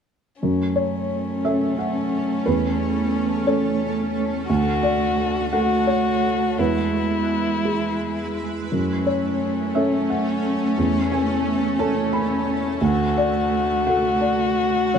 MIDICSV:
0, 0, Header, 1, 5, 480
1, 0, Start_track
1, 0, Key_signature, 3, "minor"
1, 0, Tempo, 678733
1, 298, Time_signature, 6, 3, 24, 8
1, 3171, Tempo, 705882
1, 6051, Tempo, 682594
1, 8931, Tempo, 712589
1, 10394, End_track
2, 0, Start_track
2, 0, Title_t, "Felt piano"
2, 0, Program_c, 0, 0
2, 303, Note_on_c, 0, 42, 41
2, 422, Control_c, 0, 64, 127
2, 536, Note_on_c, 0, 73, 53
2, 996, Note_off_c, 0, 73, 0
2, 1023, Note_on_c, 0, 76, 60
2, 1028, Note_on_c, 0, 61, 33
2, 1030, Note_on_c, 0, 69, 35
2, 1248, Note_off_c, 0, 76, 0
2, 1264, Note_on_c, 0, 78, 48
2, 1713, Note_off_c, 0, 78, 0
2, 1714, Note_off_c, 0, 61, 0
2, 1715, Note_off_c, 0, 69, 0
2, 1717, Note_off_c, 0, 42, 0
2, 1738, Note_on_c, 0, 71, 55
2, 1747, Note_on_c, 0, 40, 42
2, 1757, Control_c, 0, 64, 0
2, 1859, Control_c, 0, 64, 127
2, 2424, Note_off_c, 0, 71, 0
2, 2454, Note_on_c, 0, 73, 60
2, 2457, Note_on_c, 0, 61, 37
2, 2459, Note_on_c, 0, 69, 43
2, 3142, Note_off_c, 0, 73, 0
2, 3144, Note_off_c, 0, 61, 0
2, 3145, Note_off_c, 0, 40, 0
2, 3145, Note_off_c, 0, 69, 0
2, 3177, Note_on_c, 0, 38, 51
2, 3185, Control_c, 0, 64, 0
2, 3288, Control_c, 0, 64, 127
2, 3407, Note_on_c, 0, 74, 67
2, 3853, Note_off_c, 0, 74, 0
2, 3881, Note_on_c, 0, 78, 71
2, 3883, Note_on_c, 0, 66, 40
2, 3884, Note_on_c, 0, 69, 44
2, 4101, Note_off_c, 0, 78, 0
2, 4115, Note_on_c, 0, 73, 63
2, 4568, Note_off_c, 0, 73, 0
2, 4570, Note_off_c, 0, 66, 0
2, 4571, Note_off_c, 0, 69, 0
2, 4572, Note_off_c, 0, 38, 0
2, 4600, Note_on_c, 0, 40, 45
2, 4603, Note_on_c, 0, 71, 45
2, 4610, Control_c, 0, 64, 0
2, 4716, Control_c, 0, 64, 127
2, 5297, Note_off_c, 0, 71, 0
2, 5322, Note_on_c, 0, 64, 34
2, 5325, Note_on_c, 0, 68, 37
2, 6022, Note_off_c, 0, 64, 0
2, 6024, Note_off_c, 0, 40, 0
2, 6024, Note_off_c, 0, 68, 0
2, 6051, Note_on_c, 0, 42, 41
2, 6062, Control_c, 0, 64, 0
2, 6173, Control_c, 0, 64, 127
2, 6294, Note_on_c, 0, 73, 48
2, 6749, Note_off_c, 0, 73, 0
2, 6776, Note_on_c, 0, 76, 63
2, 6784, Note_on_c, 0, 61, 33
2, 6787, Note_on_c, 0, 69, 37
2, 6999, Note_off_c, 0, 76, 0
2, 7022, Note_on_c, 0, 78, 47
2, 7467, Note_off_c, 0, 42, 0
2, 7469, Note_off_c, 0, 78, 0
2, 7470, Note_off_c, 0, 61, 0
2, 7472, Note_off_c, 0, 69, 0
2, 7500, Note_on_c, 0, 40, 46
2, 7508, Control_c, 0, 64, 0
2, 7625, Control_c, 0, 64, 127
2, 7740, Note_on_c, 0, 80, 59
2, 8182, Note_off_c, 0, 80, 0
2, 8212, Note_on_c, 0, 81, 69
2, 8214, Note_on_c, 0, 61, 41
2, 8217, Note_on_c, 0, 69, 43
2, 8430, Note_off_c, 0, 81, 0
2, 8448, Note_on_c, 0, 83, 64
2, 8902, Note_off_c, 0, 83, 0
2, 8903, Note_off_c, 0, 40, 0
2, 8904, Note_off_c, 0, 61, 0
2, 8905, Note_off_c, 0, 69, 0
2, 8929, Note_on_c, 0, 38, 58
2, 8942, Control_c, 0, 64, 0
2, 9061, Control_c, 0, 64, 127
2, 9175, Note_on_c, 0, 74, 70
2, 9618, Note_off_c, 0, 74, 0
2, 9641, Note_on_c, 0, 78, 76
2, 9647, Note_on_c, 0, 66, 43
2, 9651, Note_on_c, 0, 69, 45
2, 9864, Note_off_c, 0, 78, 0
2, 9871, Note_on_c, 0, 74, 62
2, 10336, Note_off_c, 0, 74, 0
2, 10341, Note_off_c, 0, 38, 0
2, 10344, Note_off_c, 0, 66, 0
2, 10346, Note_off_c, 0, 69, 0
2, 10363, Note_on_c, 0, 73, 47
2, 10370, Note_on_c, 0, 42, 39
2, 10382, Control_c, 0, 64, 0
2, 10394, Note_off_c, 0, 42, 0
2, 10394, Note_off_c, 0, 73, 0
2, 10394, End_track
3, 0, Start_track
3, 0, Title_t, "Violin"
3, 0, Program_c, 1, 40
3, 290, Note_on_c, 1, 61, 44
3, 3139, Note_off_c, 1, 61, 0
3, 3171, Note_on_c, 1, 66, 51
3, 3853, Note_off_c, 1, 66, 0
3, 3891, Note_on_c, 1, 66, 54
3, 4607, Note_on_c, 1, 64, 48
3, 4617, Note_off_c, 1, 66, 0
3, 5917, Note_off_c, 1, 64, 0
3, 6053, Note_on_c, 1, 61, 42
3, 8927, Note_on_c, 1, 66, 57
3, 8938, Note_off_c, 1, 61, 0
3, 10394, Note_off_c, 1, 66, 0
3, 10394, End_track
4, 0, Start_track
4, 0, Title_t, "Ambient pad"
4, 0, Program_c, 2, 92
4, 302, Note_on_c, 2, 57, 52
4, 304, Note_on_c, 2, 69, 55
4, 306, Note_on_c, 2, 61, 53
4, 3147, Note_off_c, 2, 61, 0
4, 3168, Note_on_c, 2, 66, 55
4, 4571, Note_off_c, 2, 57, 0
4, 4572, Note_off_c, 2, 69, 0
4, 4593, Note_on_c, 2, 56, 54
4, 4593, Note_on_c, 2, 71, 55
4, 4594, Note_off_c, 2, 66, 0
4, 4598, Note_on_c, 2, 64, 55
4, 6048, Note_off_c, 2, 56, 0
4, 6048, Note_off_c, 2, 71, 0
4, 6049, Note_on_c, 2, 57, 55
4, 6050, Note_on_c, 2, 61, 54
4, 6051, Note_off_c, 2, 64, 0
4, 6051, Note_on_c, 2, 69, 54
4, 8919, Note_on_c, 2, 66, 60
4, 8929, Note_off_c, 2, 61, 0
4, 10356, Note_off_c, 2, 57, 0
4, 10368, Note_off_c, 2, 69, 0
4, 10394, Note_off_c, 2, 66, 0
4, 10394, End_track
5, 0, Start_track
5, 0, Title_t, "Cello"
5, 0, Program_c, 3, 42
5, 297, Note_on_c, 3, 57, 46
5, 3143, Note_off_c, 3, 57, 0
5, 3166, Note_on_c, 3, 57, 52
5, 3850, Note_off_c, 3, 57, 0
5, 3882, Note_on_c, 3, 57, 50
5, 4598, Note_on_c, 3, 56, 44
5, 4608, Note_off_c, 3, 57, 0
5, 5912, Note_off_c, 3, 56, 0
5, 6045, Note_on_c, 3, 57, 37
5, 8898, Note_off_c, 3, 57, 0
5, 8935, Note_on_c, 3, 57, 51
5, 10394, Note_off_c, 3, 57, 0
5, 10394, End_track
0, 0, End_of_file